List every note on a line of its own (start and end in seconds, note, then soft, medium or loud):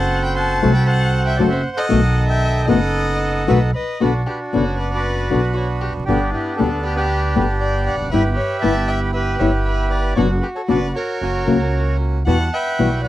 0.00 0.60 F#1 medium
0.00 0.59 C4 medium
0.00 0.59 F#4 medium
0.00 0.60 A4 medium
0.00 0.72 C5 medium
0.00 0.21 F#5 medium
0.00 0.35 F#5 medium
0.00 0.21 A5 loud
0.23 0.37 G5 medium
0.23 0.36 B5 medium
0.35 0.86 F#5 medium
0.35 0.84 A5 medium
0.35 0.73 A5 medium
0.35 0.72 C6 loud
0.62 1.36 C2 medium
0.62 0.72 F#3 medium
0.62 0.72 A3 loud
0.62 1.36 C4 medium
0.62 0.72 C4 medium
0.62 1.36 F#4 medium
0.62 0.72 F#4 loud
0.62 1.36 A4 medium
0.73 0.87 G5 medium
0.73 0.86 B5 medium
0.86 1.86 C5 medium
0.86 1.75 F#5 medium
0.86 1.25 F#5 medium
0.86 1.23 A5 loud
1.25 1.39 E5 medium
1.25 1.38 G5 medium
1.36 1.49 F#3 medium
1.36 1.48 A3 medium
1.36 1.61 C4 medium
1.36 1.49 C4 loud
1.36 1.49 F#4 loud
1.36 1.62 F#4 medium
1.36 1.61 A4 medium
1.36 1.43 D5 medium
1.40 1.62 F#1 medium
1.40 1.46 A4 medium
1.50 1.64 C5 medium
1.50 1.62 E5 medium
1.77 2.68 A4 medium
1.77 2.29 D#5 medium
1.77 2.26 D#5 medium
1.77 2.25 F#5 loud
1.89 2.66 B1 loud
1.89 1.99 B2 medium
1.89 2.00 D#3 medium
1.89 2.65 D#3 medium
1.89 1.99 A3 loud
1.89 2.00 B3 medium
1.89 2.65 B3 medium
1.89 2.00 F#4 medium
1.89 2.65 A4 medium
2.29 2.68 D#5 medium
2.29 2.65 E5 medium
2.29 2.66 G5 medium
2.67 3.44 F#1 medium
2.67 2.77 B2 medium
2.67 2.77 D#3 medium
2.67 2.78 A3 loud
2.67 3.44 B3 medium
2.67 2.78 B3 medium
2.67 3.44 D#4 medium
2.67 2.78 F#4 medium
2.67 3.44 A4 loud
2.67 3.71 A4 medium
2.67 3.44 D#5 medium
2.67 3.71 D#5 medium
2.67 3.71 F#5 medium
3.47 3.71 B1 medium
3.47 3.57 B2 medium
3.47 3.57 D#3 loud
3.47 3.57 A3 medium
3.47 3.57 B3 loud
3.47 3.71 B3 medium
3.47 3.71 D#4 medium
3.47 3.57 F#4 medium
3.47 3.71 A4 medium
3.47 3.61 B4 medium
3.47 3.61 E5 medium
3.75 3.99 B4 medium
3.75 4.02 D#5 medium
4.00 4.23 B1 medium
4.00 4.10 B2 medium
4.00 4.10 D3 medium
4.00 4.10 B3 medium
4.00 4.23 B3 medium
4.00 4.23 D4 medium
4.00 4.11 D4 medium
4.00 5.02 D4 medium
4.00 4.13 F#4 medium
4.00 4.11 F#4 medium
4.00 4.24 F#4 medium
4.00 4.95 F#4 medium
4.00 4.14 B4 medium
4.26 4.38 G4 medium
4.26 4.40 B4 medium
4.53 5.28 F#1 medium
4.53 4.62 B2 medium
4.53 4.62 D3 medium
4.53 4.63 B3 medium
4.53 5.28 B3 medium
4.53 4.63 D4 medium
4.53 5.28 D4 medium
4.53 4.77 F#4 medium
4.53 4.63 F#4 medium
4.53 5.28 F#4 medium
4.53 4.79 C#5 medium
4.78 4.90 B4 medium
4.78 4.92 D5 medium
4.91 5.40 B4 medium
4.91 5.42 D5 medium
4.96 5.93 F#4 medium
4.96 5.80 B4 medium
5.30 5.90 B1 medium
5.30 5.39 B2 medium
5.30 5.40 D3 medium
5.30 5.40 B3 medium
5.30 6.04 B3 medium
5.30 5.40 D4 medium
5.30 6.04 D4 medium
5.30 5.40 F#4 medium
5.30 6.04 F#4 medium
5.54 5.66 F#4 medium
5.54 5.68 C#5 medium
5.81 5.93 G4 medium
5.81 5.94 B4 medium
5.90 5.96 E1 soft
5.97 6.02 F1 medium
6.03 6.08 F#1 medium
6.03 6.31 G4 medium
6.07 6.30 G1 medium
6.07 6.17 B2 medium
6.07 6.17 D3 medium
6.07 6.18 G3 medium
6.07 7.07 B3 medium
6.07 6.30 B3 medium
6.07 6.18 B3 medium
6.07 6.32 D4 medium
6.07 6.96 D4 medium
6.07 6.30 D4 medium
6.07 6.30 G4 medium
6.07 6.18 G4 medium
6.34 6.57 E4 medium
6.34 6.60 G4 medium
6.57 6.68 B2 medium
6.57 6.68 D3 medium
6.57 6.69 G3 medium
6.57 7.33 B3 medium
6.57 6.69 B3 medium
6.57 6.83 D4 medium
6.57 7.32 D4 medium
6.57 7.33 G4 medium
6.57 6.69 G4 medium
6.57 6.85 A4 medium
6.61 7.33 D2 medium
6.83 6.97 G4 medium
6.83 6.94 B4 medium
6.96 7.96 D4 medium
6.96 7.96 G4 medium
6.96 7.45 G4 medium
6.96 7.44 B4 medium
7.35 7.93 G1 medium
7.35 7.45 B2 medium
7.35 7.45 D3 medium
7.35 7.45 G3 medium
7.35 7.45 B3 medium
7.35 8.09 B3 medium
7.35 8.09 D4 medium
7.35 7.45 G4 medium
7.35 8.09 G4 medium
7.60 7.85 D5 medium
7.60 7.85 G5 medium
7.86 8.10 D5 medium
7.86 8.11 F#5 medium
7.94 8.00 E1 soft
8.01 8.06 F1 medium
8.06 8.13 F#1 medium
8.11 8.34 G1 loud
8.11 8.21 G3 medium
8.11 8.34 B3 medium
8.11 8.22 B3 medium
8.11 8.34 E4 medium
8.11 8.22 E4 medium
8.11 8.34 G4 medium
8.11 9.11 G4 medium
8.11 8.23 B4 medium
8.11 9.11 B4 medium
8.11 8.23 E5 medium
8.36 8.61 C#5 medium
8.36 8.61 E5 medium
8.61 9.37 G1 medium
8.61 8.72 G3 medium
8.61 8.72 B3 loud
8.61 9.37 B3 medium
8.61 8.72 E4 medium
8.61 9.37 E4 medium
8.61 9.37 G4 medium
8.61 8.86 E5 medium
8.61 8.89 A5 medium
8.88 9.00 E5 medium
8.88 9.00 G5 medium
9.14 10.14 G4 medium
9.14 9.38 B4 medium
9.14 10.14 B4 medium
9.14 9.38 E5 medium
9.39 10.14 G1 medium
9.39 9.49 G3 medium
9.39 10.13 B3 medium
9.39 9.50 B3 medium
9.39 10.13 E4 medium
9.39 9.50 E4 medium
9.39 10.14 G4 medium
9.39 9.52 C#5 medium
9.39 9.51 E5 medium
9.65 9.90 B4 medium
9.65 9.89 E5 medium
9.91 10.15 B4 medium
9.91 10.18 D5 medium
10.15 10.39 F#1 medium
10.15 10.26 B2 medium
10.15 10.26 F#3 medium
10.15 10.39 B3 medium
10.15 10.26 B3 medium
10.15 10.39 D4 medium
10.15 10.27 D4 medium
10.15 10.96 F#4 medium
10.15 10.28 F#4 medium
10.15 10.26 F#4 medium
10.15 10.39 F#4 medium
10.15 10.27 C#5 medium
10.41 10.49 G4 medium
10.41 10.47 B4 medium
10.55 10.62 A4 medium
10.55 10.61 C#5 medium
10.68 10.91 F#1 medium
10.68 10.78 B2 medium
10.68 10.78 F#3 medium
10.68 10.90 B3 medium
10.68 10.78 B3 medium
10.68 10.91 D4 medium
10.68 10.78 D4 medium
10.68 10.91 F#4 medium
10.68 10.78 F#4 medium
10.68 10.93 B4 medium
10.68 10.93 D5 medium
10.95 11.97 F#4 medium
10.95 11.97 A#4 medium
10.95 11.96 C#5 medium
11.21 11.43 F#1 medium
11.21 11.43 A#3 medium
11.21 11.43 C#4 medium
11.21 11.43 F#4 medium
11.47 12.23 C#2 medium
11.47 11.56 C#3 medium
11.47 11.56 F#3 medium
11.47 11.56 A#3 medium
11.47 12.23 A#3 medium
11.47 11.56 C#4 medium
11.47 12.23 C#4 medium
11.47 11.57 F#4 medium
11.47 12.23 F#4 medium
12.26 12.49 E2 medium
12.26 12.36 B2 medium
12.26 12.36 E3 medium
12.26 12.48 G3 medium
12.26 12.36 G3 medium
12.26 12.36 B3 medium
12.26 12.48 E4 medium
12.26 12.49 F#4 medium
12.26 12.36 F#4 medium
12.26 12.51 F#5 medium
12.26 13.02 F#5 medium
12.26 12.54 A5 medium
12.53 13.08 B4 medium
12.53 13.01 E5 medium
12.53 13.01 G5 medium
12.79 13.08 B1 medium
12.79 12.88 B2 medium
12.79 12.88 E3 medium
12.79 13.08 G3 medium
12.79 12.88 G3 medium
12.79 12.88 B3 medium
12.79 13.08 E4 medium
12.79 13.08 F#4 medium
12.79 12.88 F#4 medium
13.03 13.08 D5 medium
13.03 13.08 F#5 medium